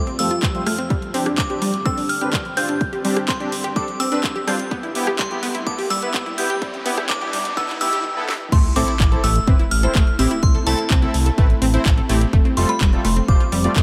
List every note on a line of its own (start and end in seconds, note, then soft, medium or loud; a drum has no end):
0.00 0.87 F2 medium
0.00 0.87 F3 medium
0.00 0.87 A3 medium
0.00 0.87 G4 loud
0.07 0.17 C4 medium
0.07 closed hi-hat soft
0.19 0.27 G3 medium
0.19 0.27 A3 medium
0.19 0.27 C4 medium
0.19 0.27 F4 medium
0.19 0.27 A4 loud
0.19 0.68 E6 loud
0.19 open hi-hat loud
0.31 0.37 F4 medium
0.31 closed hi-hat medium
0.43 0.52 G3 medium
0.43 kick loud
0.43 clap loud
0.43 closed hi-hat soft
0.55 0.62 G3 medium
0.55 0.62 A3 medium
0.55 0.62 C4 medium
0.55 0.62 F4 medium
0.55 0.62 C5 medium
0.55 closed hi-hat soft
0.66 0.70 A3 loud
0.66 0.89 F6 medium
0.66 cross-stick medium
0.66 open hi-hat loud
0.78 0.88 C4 medium
0.78 closed hi-hat soft
0.90 8.01 G2 medium
0.90 4.68 D3 medium
0.90 1.00 G3 loud
0.90 4.68 C4 medium
0.90 4.68 G4 medium
0.90 kick loud
0.90 closed hi-hat soft
0.90 riser medium
1.02 closed hi-hat soft
1.14 1.18 C4 loud
1.14 1.26 C4 medium
1.14 1.26 D4 medium
1.14 1.26 G4 loud
1.14 open hi-hat loud
1.26 1.32 D4 medium
1.26 cross-stick medium
1.26 closed hi-hat medium
1.38 1.87 D6 medium
1.38 kick loud
1.38 clap loud
1.38 closed hi-hat soft
1.50 1.57 C4 medium
1.50 1.57 D4 medium
1.50 1.56 G4 medium
1.50 1.57 G4 loud
1.50 closed hi-hat soft
1.62 1.71 G3 loud
1.62 open hi-hat loud
1.74 closed hi-hat soft
1.85 1.89 C4 loud
1.85 1.93 C4 medium
1.85 1.93 D4 medium
1.85 1.93 A4 medium
1.85 2.10 E6 loud
1.85 kick loud
1.85 closed hi-hat soft
1.97 2.04 D4 medium
1.97 open hi-hat medium
2.09 2.58 F6 loud
2.09 open hi-hat loud
2.21 2.29 C4 medium
2.21 2.29 D4 medium
2.21 2.28 G4 medium
2.21 2.29 B4 medium
2.21 closed hi-hat medium
2.33 2.43 G3 loud
2.33 kick loud
2.33 clap loud
2.33 closed hi-hat soft
2.45 closed hi-hat soft
2.57 2.61 C4 medium
2.57 2.65 C4 medium
2.57 2.65 D4 medium
2.57 2.65 F4 loud
2.57 2.79 G6 medium
2.57 open hi-hat loud
2.69 2.75 D4 medium
2.69 closed hi-hat medium
2.81 kick loud
2.81 closed hi-hat soft
2.93 2.99 G4 medium
2.93 closed hi-hat soft
3.05 3.14 G3 loud
3.05 3.17 C4 medium
3.05 3.17 D4 medium
3.05 3.17 G4 loud
3.05 open hi-hat loud
3.17 cross-stick medium
3.17 closed hi-hat medium
3.28 3.32 C4 loud
3.28 3.78 C6 medium
3.28 kick loud
3.28 clap loud
3.28 closed hi-hat medium
3.40 3.48 C4 medium
3.40 3.47 D4 medium
3.40 3.48 D4 medium
3.40 3.48 G4 loud
3.40 closed hi-hat soft
3.52 open hi-hat loud
3.64 3.71 G4 medium
3.64 closed hi-hat medium
3.76 3.86 G3 loud
3.76 3.84 C4 medium
3.76 3.84 D4 medium
3.76 3.84 A4 medium
3.76 4.01 D6 loud
3.76 kick loud
3.76 closed hi-hat soft
3.88 closed hi-hat soft
4.00 4.04 C4 loud
4.00 4.49 E6 loud
4.00 open hi-hat loud
4.12 4.19 C4 medium
4.12 4.18 D4 medium
4.12 4.19 D4 medium
4.12 4.19 B4 medium
4.12 closed hi-hat medium
4.24 kick loud
4.24 clap loud
4.24 closed hi-hat medium
4.36 4.42 G4 medium
4.36 closed hi-hat soft
4.47 4.57 G3 loud
4.47 4.55 C4 medium
4.47 4.55 D4 medium
4.47 4.55 F4 loud
4.47 4.70 G6 medium
4.47 cross-stick medium
4.47 open hi-hat loud
4.59 closed hi-hat medium
4.71 8.01 G3 medium
4.71 6.60 B3 medium
4.71 4.75 B3 loud
4.71 8.01 E4 medium
4.71 kick loud
4.71 closed hi-hat medium
4.83 4.90 E4 medium
4.83 closed hi-hat soft
4.95 5.07 B3 medium
4.95 5.07 E4 medium
4.95 5.07 G4 loud
4.95 open hi-hat loud
5.07 5.13 G4 medium
5.07 cross-stick medium
5.07 closed hi-hat medium
5.19 5.29 G3 loud
5.19 5.68 C6 medium
5.19 kick loud
5.19 clap loud
5.19 closed hi-hat medium
5.31 5.38 B3 medium
5.31 5.38 E4 medium
5.31 5.38 G4 loud
5.31 closed hi-hat soft
5.43 5.47 B3 loud
5.43 open hi-hat loud
5.55 5.61 E4 medium
5.55 closed hi-hat medium
5.67 5.74 B3 medium
5.67 5.74 E4 medium
5.67 5.74 A4 medium
5.67 5.91 D6 loud
5.67 kick loud
5.67 closed hi-hat medium
5.78 5.85 G4 medium
5.78 open hi-hat medium
5.90 6.00 G3 loud
5.90 6.39 E6 loud
5.90 open hi-hat loud
6.02 6.10 B3 medium
6.02 6.10 E4 medium
6.02 6.10 B4 medium
6.02 closed hi-hat medium
6.14 6.18 B3 medium
6.14 kick loud
6.14 clap loud
6.14 closed hi-hat medium
6.26 6.33 E4 medium
6.26 closed hi-hat soft
6.38 6.46 B3 loud
6.38 6.46 E4 medium
6.38 6.46 G4 loud
6.38 6.60 G6 loud
6.38 open hi-hat loud
6.50 6.56 G4 medium
6.50 closed hi-hat medium
6.62 6.71 G3 loud
6.62 8.03 A3 medium
6.62 kick loud
6.62 closed hi-hat medium
6.74 closed hi-hat soft
6.86 6.98 B3 medium
6.86 6.89 B3 loud
6.86 6.98 E4 medium
6.86 6.98 G4 loud
6.86 open hi-hat loud
6.98 7.04 E4 medium
6.98 cross-stick medium
6.98 closed hi-hat medium
7.09 7.58 D6 medium
7.09 kick loud
7.09 clap loud
7.09 closed hi-hat medium
7.21 7.29 B3 medium
7.21 7.29 E4 medium
7.21 7.28 G4 medium
7.21 7.29 G4 loud
7.21 closed hi-hat soft
7.33 7.43 G3 medium
7.33 open hi-hat loud
7.45 closed hi-hat medium
7.57 7.61 B3 loud
7.57 7.65 B3 medium
7.57 7.65 E4 medium
7.57 7.65 A4 loud
7.57 7.68 E6 loud
7.57 kick loud
7.57 closed hi-hat medium
7.69 7.75 E4 medium
7.69 clap soft
7.69 closed hi-hat soft
7.81 7.88 B3 loud
7.81 7.88 E4 medium
7.81 7.88 G4 loud
7.81 8.03 E6 loud
7.81 open hi-hat loud
7.93 7.99 G4 medium
7.93 closed hi-hat medium
8.17 8.24 B3 medium
8.17 8.24 E4 medium
8.17 8.24 A4 medium
8.28 snare loud
8.52 8.60 A1 loud
8.52 12.29 A3 medium
8.52 8.62 A3 loud
8.52 13.83 C4 medium
8.52 12.29 E4 loud
8.52 8.77 C6 loud
8.52 kick loud
8.52 closed hi-hat medium
8.52 crash loud
8.52 sub drop medium
8.64 closed hi-hat soft
8.76 8.84 A1 loud
8.76 8.80 C4 loud
8.76 8.88 C4 medium
8.76 8.88 E4 medium
8.76 8.88 A4 loud
8.76 9.25 D6 loud
8.76 open hi-hat loud
8.88 8.94 E4 medium
8.88 closed hi-hat medium
9.00 9.16 A1 medium
9.00 kick loud
9.00 clap loud
9.00 closed hi-hat medium
9.12 9.19 C4 medium
9.12 9.19 E4 medium
9.12 9.18 A4 medium
9.12 9.19 A4 loud
9.12 closed hi-hat soft
9.24 9.39 A1 medium
9.24 9.33 A3 loud
9.24 9.73 E6 loud
9.24 open hi-hat loud
9.36 closed hi-hat medium
9.47 9.55 A1 loud
9.47 9.51 C4 loud
9.47 9.55 C4 medium
9.47 9.55 E4 medium
9.47 9.55 B4 medium
9.47 kick loud
9.47 closed hi-hat medium
9.59 9.66 E4 medium
9.59 closed hi-hat soft
9.71 9.87 A1 medium
9.71 10.16 F6 loud
9.71 open hi-hat loud
9.83 9.91 C4 medium
9.83 9.91 E4 medium
9.83 9.90 A4 medium
9.83 9.91 C5 medium
9.83 closed hi-hat medium
9.95 10.03 A1 loud
9.95 10.05 A3 medium
9.95 kick loud
9.95 clap loud
9.95 closed hi-hat medium
10.07 closed hi-hat soft
10.19 10.27 A1 medium
10.19 10.23 C4 medium
10.19 10.27 C4 loud
10.19 10.27 E4 medium
10.19 10.27 G4 loud
10.19 10.44 E6 loud
10.19 open hi-hat loud
10.31 10.37 E4 medium
10.31 closed hi-hat medium
10.43 10.58 C2 medium
10.43 10.67 C6 loud
10.43 kick loud
10.43 closed hi-hat soft
10.55 10.61 A4 medium
10.55 closed hi-hat soft
10.67 10.74 C2 medium
10.67 10.76 A3 loud
10.67 10.79 C4 loud
10.67 10.79 E4 medium
10.67 10.79 A4 loud
10.67 12.05 A5 medium
10.67 open hi-hat loud
10.79 closed hi-hat medium
10.90 11.06 C2 medium
10.90 10.94 C4 loud
10.90 kick loud
10.90 clap loud
10.90 closed hi-hat medium
11.02 11.10 C4 medium
11.02 11.10 E4 medium
11.02 11.09 E4 medium
11.02 11.10 A4 loud
11.02 closed hi-hat soft
11.14 11.30 C2 loud
11.14 open hi-hat loud
11.26 11.33 A4 medium
11.26 closed hi-hat medium
11.38 11.54 A1 medium
11.38 11.48 A3 loud
11.38 11.46 C4 medium
11.38 11.46 E4 medium
11.38 11.46 B4 medium
11.38 kick loud
11.38 closed hi-hat medium
11.50 closed hi-hat soft
11.62 11.77 A1 medium
11.62 11.66 C4 loud
11.62 open hi-hat loud
11.74 11.81 C4 medium
11.74 11.80 E4 medium
11.74 11.81 E4 medium
11.74 11.81 C5 medium
11.74 closed hi-hat medium
11.86 12.01 A1 medium
11.86 kick loud
11.86 clap loud
11.86 closed hi-hat medium
11.98 12.04 A4 medium
11.98 closed hi-hat soft
12.09 12.25 A1 medium
12.09 12.19 A3 loud
12.09 12.17 C4 medium
12.09 12.17 E4 medium
12.09 12.17 G4 loud
12.09 open hi-hat loud
12.21 closed hi-hat medium
12.33 12.41 F1 loud
12.33 13.83 F3 medium
12.33 12.37 A3 loud
12.33 13.83 G4 medium
12.33 13.83 A4 loud
12.33 kick loud
12.33 closed hi-hat soft
12.45 12.52 C4 medium
12.45 closed hi-hat soft
12.57 12.65 F1 loud
12.57 12.69 G3 medium
12.57 12.69 A3 medium
12.57 12.69 C4 medium
12.57 12.69 F4 medium
12.57 12.69 A4 loud
12.57 12.69 C6 medium
12.57 open hi-hat loud
12.69 12.75 F4 medium
12.69 13.06 B5 medium
12.69 closed hi-hat medium
12.81 12.97 F1 medium
12.81 12.90 G3 loud
12.81 kick loud
12.81 clap loud
12.81 closed hi-hat soft
12.93 13.00 G3 medium
12.93 13.00 A3 medium
12.93 13.00 C4 medium
12.93 13.00 F4 medium
12.93 13.00 A4 loud
12.93 closed hi-hat soft
13.05 13.20 F1 medium
13.05 13.09 A3 loud
13.05 13.27 C6 medium
13.05 open hi-hat loud
13.17 13.23 C4 medium
13.17 closed hi-hat soft
13.28 13.36 F1 loud
13.28 13.36 G3 medium
13.28 13.36 A3 medium
13.28 13.36 C4 medium
13.28 13.36 F4 medium
13.28 13.36 C5 loud
13.28 13.83 D6 loud
13.28 kick loud
13.28 closed hi-hat medium
13.40 13.47 F4 medium
13.40 closed hi-hat soft
13.52 13.68 F1 medium
13.52 13.62 G3 loud
13.52 open hi-hat loud
13.64 13.72 G3 medium
13.64 13.72 A3 medium
13.64 13.72 C4 medium
13.64 13.72 F4 medium
13.64 13.72 D5 medium
13.64 closed hi-hat medium
13.76 13.83 F1 loud
13.76 13.80 A3 loud
13.76 kick loud
13.76 clap loud
13.76 closed hi-hat medium